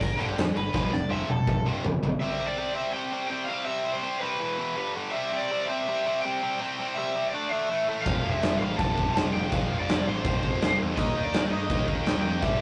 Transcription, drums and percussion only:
0.01 kick, crash
0.20 crash
0.38 snare, crash
0.56 crash
0.74 kick, snare
0.93 snare
1.29 high tom
1.47 kick, mid tom
1.85 floor tom
2.03 floor tom
8.06 kick, crash
8.42 snare, crash
8.79 kick, crash
8.98 kick
9.16 snare, crash
9.52 kick, crash
9.89 snare, crash
10.25 kick, crash
10.43 kick
10.62 snare, crash
10.97 kick, crash
11.34 snare, crash
11.70 kick, crash
11.88 kick
12.06 snare, crash
12.42 kick, crash

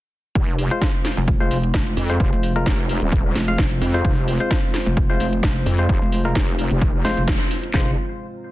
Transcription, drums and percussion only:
0.35 kick, closed hi-hat
0.59 open hi-hat
0.71 closed hi-hat
0.82 kick, snare, closed hi-hat
1.05 snare, open hi-hat
1.17 closed hi-hat
1.28 kick, closed hi-hat
1.51 open hi-hat
1.63 closed hi-hat
1.74 kick, snare, closed hi-hat
1.87 closed hi-hat
1.97 open hi-hat
2.10 closed hi-hat
2.20 kick, closed hi-hat
2.43 open hi-hat
2.56 closed hi-hat
2.66 kick, snare, closed hi-hat
2.89 open hi-hat
3.02 closed hi-hat
3.12 kick, closed hi-hat
3.35 snare, open hi-hat
3.48 closed hi-hat
3.58 kick, snare, closed hi-hat
3.71 closed hi-hat
3.82 open hi-hat
3.94 closed hi-hat
4.05 kick, closed hi-hat
4.28 open hi-hat
4.40 closed hi-hat
4.51 kick, snare, closed hi-hat
4.74 snare, open hi-hat
4.87 closed hi-hat
4.97 kick, closed hi-hat
5.20 open hi-hat
5.33 closed hi-hat
5.43 kick, snare, closed hi-hat
5.56 closed hi-hat
5.66 open hi-hat
5.79 closed hi-hat
5.89 kick, closed hi-hat
6.12 open hi-hat
6.25 closed hi-hat
6.35 kick, snare, closed hi-hat
6.59 open hi-hat
6.71 closed hi-hat
6.82 kick, closed hi-hat
7.05 snare, open hi-hat
7.17 closed hi-hat
7.28 kick, snare, closed hi-hat
7.40 closed hi-hat
7.51 open hi-hat
7.63 closed hi-hat
7.74 kick, snare, clap

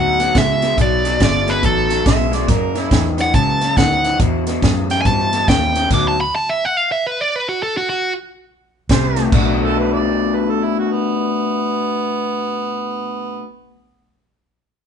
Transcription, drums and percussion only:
0.20 snare, closed hi-hat
0.35 kick, snare, closed hi-hat
0.62 snare, closed hi-hat
0.78 kick, closed hi-hat
1.05 snare, closed hi-hat
1.20 kick, snare, closed hi-hat
1.48 snare, closed hi-hat
1.63 kick, closed hi-hat
1.90 snare, closed hi-hat
2.06 kick, snare, closed hi-hat
2.33 snare, closed hi-hat
2.48 kick, snare, closed hi-hat
2.75 snare, closed hi-hat
2.91 kick, snare, closed hi-hat
3.18 snare, closed hi-hat
3.34 kick, closed hi-hat
3.61 snare, closed hi-hat
3.77 kick, snare, closed hi-hat
4.04 snare, closed hi-hat
4.20 kick, closed hi-hat
4.47 snare, closed hi-hat
4.62 kick, snare, closed hi-hat
4.90 snare, closed hi-hat
5.05 kick, closed hi-hat
5.33 snare, closed hi-hat
5.48 kick, snare, closed hi-hat
5.75 snare, closed hi-hat
5.91 kick, snare, closed hi-hat, crash
8.89 kick, snare, closed hi-hat
9.16 snare, closed hi-hat
9.32 kick, crash

